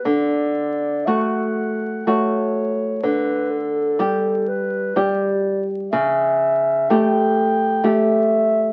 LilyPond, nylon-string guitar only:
\new Staff \with { instrumentName = "Nylon-string guitar" } { \time 3/4 \key d \major \tempo 4 = 62 d4 <a fis'>4 <a fis'>4 | d4 <g g'>4 <g g'>4 | cis4 <a g'>4 <a g'>4 | }